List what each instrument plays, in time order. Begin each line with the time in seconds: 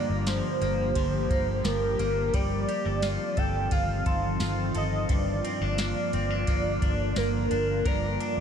Already playing: clean electric guitar G2 F3 A#3 D4, ambient pad D3 F3 G3 A#3 G4, soft synth lead D5
0.10 fingered electric bass G1
0.27 clean electric guitar F3, soft synth lead C5, snare, ride, tambourine
0.61 fingered electric bass G1, clean electric guitar A#3, ride
0.95 fingered electric bass G1, clean electric guitar F3, kick, ride
1.30 fingered electric bass G1, clean electric guitar A#3, kick, ride
1.65 fingered electric bass G1, clean electric guitar F3, soft synth lead A#4, snare, ride, tambourine
1.99 fingered electric bass G1, clean electric guitar A#3, ride
2.33 fingered electric bass G1, ambient pad D#3 F3 C4 F4, clean electric guitar G3, soft synth lead D5, kick, ride
2.68 clean electric guitar G4, ride
2.85 fingered electric bass G1, clean electric guitar A4
3.02 clean electric guitar F4, snare, ride, tambourine
3.37 fingered electric bass G1, clean electric guitar A4, soft synth lead G5, kick, ride
3.71 fingered electric bass G1, clean electric guitar F4, soft synth lead F5, kick, ride
4.06 fingered electric bass G1, clean electric guitar A4, celesta C6, kick, ride
4.40 fingered electric bass G1, clean electric guitar F4, snare, ride, tambourine
4.75 fingered electric bass G1, clean electric guitar A4, soft synth lead D#5, ride
5.09 fingered electric bass G1, clean electric guitar G2, ambient pad D3 F3 A#3, soft synth lead D5, kick, ride
5.45 clean electric guitar C4, ride
5.61 fingered electric bass G1, clean electric guitar D4
5.78 clean electric guitar A#3, soft synth lead D5, snare, ride, tambourine
6.13 fingered electric bass G1, clean electric guitar C4, ride
6.30 clean electric guitar D4
6.47 fingered electric bass G1, clean electric guitar A#3, kick, ride
6.82 fingered electric bass G1, clean electric guitar D4, kick, ride
7.16 fingered electric bass G1, clean electric guitar A#3, soft synth lead A#4, snare, ride, tambourine
7.51 fingered electric bass G1, clean electric guitar D4, ride
7.86 fingered electric bass G1, clean electric guitar G2 A#4, ambient pad D3 G3, soft synth lead D5, kick, ride
8.20 clean electric guitar D4, ride